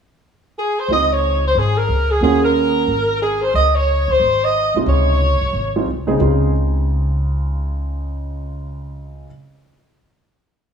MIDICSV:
0, 0, Header, 1, 4, 480
1, 0, Start_track
1, 0, Key_signature, -5, "major"
1, 0, Tempo, 331675
1, 1300, Time_signature, 4, 2, 24, 8
1, 15539, End_track
2, 0, Start_track
2, 0, Title_t, "Saxophone section"
2, 0, Program_c, 0, 65
2, 838, Note_on_c, 0, 68, 76
2, 1115, Note_off_c, 0, 68, 0
2, 1145, Note_on_c, 0, 72, 85
2, 1309, Note_off_c, 0, 72, 0
2, 1319, Note_on_c, 0, 75, 95
2, 1595, Note_off_c, 0, 75, 0
2, 1632, Note_on_c, 0, 73, 84
2, 2099, Note_off_c, 0, 73, 0
2, 2124, Note_on_c, 0, 72, 83
2, 2267, Note_off_c, 0, 72, 0
2, 2294, Note_on_c, 0, 68, 79
2, 2565, Note_on_c, 0, 70, 89
2, 2583, Note_off_c, 0, 68, 0
2, 3044, Note_off_c, 0, 70, 0
2, 3055, Note_on_c, 0, 68, 79
2, 3209, Note_off_c, 0, 68, 0
2, 3226, Note_on_c, 0, 68, 87
2, 3507, Note_off_c, 0, 68, 0
2, 3530, Note_on_c, 0, 70, 88
2, 4599, Note_off_c, 0, 70, 0
2, 4657, Note_on_c, 0, 68, 79
2, 4940, Note_off_c, 0, 68, 0
2, 4950, Note_on_c, 0, 72, 85
2, 5127, Note_off_c, 0, 72, 0
2, 5137, Note_on_c, 0, 75, 97
2, 5419, Note_off_c, 0, 75, 0
2, 5425, Note_on_c, 0, 73, 86
2, 5910, Note_off_c, 0, 73, 0
2, 5940, Note_on_c, 0, 72, 89
2, 6407, Note_off_c, 0, 72, 0
2, 6427, Note_on_c, 0, 75, 89
2, 6890, Note_off_c, 0, 75, 0
2, 7071, Note_on_c, 0, 73, 90
2, 8439, Note_off_c, 0, 73, 0
2, 15539, End_track
3, 0, Start_track
3, 0, Title_t, "Grand piano"
3, 0, Program_c, 1, 0
3, 1302, Note_on_c, 1, 56, 43
3, 1312, Note_on_c, 1, 60, 41
3, 1319, Note_on_c, 1, 63, 41
3, 1320, Note_on_c, 1, 65, 44
3, 2026, Note_off_c, 1, 56, 0
3, 2031, Note_off_c, 1, 60, 0
3, 2034, Note_off_c, 1, 63, 0
3, 2035, Note_off_c, 1, 65, 0
3, 3218, Note_on_c, 1, 58, 53
3, 3220, Note_on_c, 1, 61, 49
3, 3225, Note_on_c, 1, 65, 52
3, 3231, Note_on_c, 1, 66, 57
3, 4175, Note_off_c, 1, 58, 0
3, 4176, Note_off_c, 1, 61, 0
3, 4179, Note_off_c, 1, 65, 0
3, 4182, Note_off_c, 1, 66, 0
3, 6882, Note_on_c, 1, 48, 50
3, 6890, Note_on_c, 1, 56, 56
3, 6896, Note_on_c, 1, 63, 51
3, 6901, Note_on_c, 1, 65, 62
3, 7495, Note_off_c, 1, 48, 0
3, 7499, Note_off_c, 1, 56, 0
3, 7502, Note_off_c, 1, 63, 0
3, 7505, Note_off_c, 1, 65, 0
3, 8335, Note_on_c, 1, 56, 52
3, 8335, Note_on_c, 1, 60, 48
3, 8337, Note_on_c, 1, 65, 58
3, 8339, Note_on_c, 1, 63, 52
3, 8479, Note_off_c, 1, 56, 0
3, 8479, Note_off_c, 1, 60, 0
3, 8480, Note_off_c, 1, 65, 0
3, 8481, Note_off_c, 1, 63, 0
3, 8781, Note_on_c, 1, 49, 63
3, 8785, Note_on_c, 1, 63, 59
3, 8787, Note_on_c, 1, 60, 58
3, 8789, Note_on_c, 1, 56, 56
3, 8794, Note_on_c, 1, 68, 72
3, 8925, Note_off_c, 1, 49, 0
3, 8936, Note_off_c, 1, 56, 0
3, 8947, Note_on_c, 1, 49, 50
3, 8950, Note_off_c, 1, 60, 0
3, 8958, Note_on_c, 1, 56, 51
3, 8965, Note_off_c, 1, 63, 0
3, 8971, Note_on_c, 1, 60, 50
3, 8987, Note_on_c, 1, 63, 49
3, 8991, Note_on_c, 1, 65, 57
3, 9411, Note_off_c, 1, 68, 0
3, 13367, Note_off_c, 1, 49, 0
3, 13378, Note_off_c, 1, 56, 0
3, 13392, Note_off_c, 1, 60, 0
3, 13407, Note_off_c, 1, 63, 0
3, 13411, Note_off_c, 1, 65, 0
3, 15539, End_track
4, 0, Start_track
4, 0, Title_t, "Upright bass"
4, 0, Program_c, 2, 32
4, 1280, Note_on_c, 2, 37, 80
4, 2200, Note_off_c, 2, 37, 0
4, 2244, Note_on_c, 2, 32, 77
4, 2697, Note_off_c, 2, 32, 0
4, 2729, Note_on_c, 2, 37, 66
4, 3179, Note_off_c, 2, 37, 0
4, 3199, Note_on_c, 2, 39, 87
4, 4117, Note_off_c, 2, 39, 0
4, 4158, Note_on_c, 2, 32, 80
4, 5075, Note_off_c, 2, 32, 0
4, 5120, Note_on_c, 2, 37, 82
4, 5855, Note_off_c, 2, 37, 0
4, 5905, Note_on_c, 2, 38, 71
4, 6065, Note_off_c, 2, 38, 0
4, 6073, Note_on_c, 2, 32, 74
4, 6811, Note_off_c, 2, 32, 0
4, 6867, Note_on_c, 2, 36, 62
4, 7031, Note_off_c, 2, 36, 0
4, 7038, Note_on_c, 2, 37, 91
4, 7772, Note_off_c, 2, 37, 0
4, 7832, Note_on_c, 2, 36, 69
4, 7993, Note_off_c, 2, 36, 0
4, 8002, Note_on_c, 2, 32, 75
4, 8449, Note_off_c, 2, 32, 0
4, 8478, Note_on_c, 2, 36, 66
4, 8927, Note_off_c, 2, 36, 0
4, 8969, Note_on_c, 2, 37, 92
4, 13332, Note_off_c, 2, 37, 0
4, 15539, End_track
0, 0, End_of_file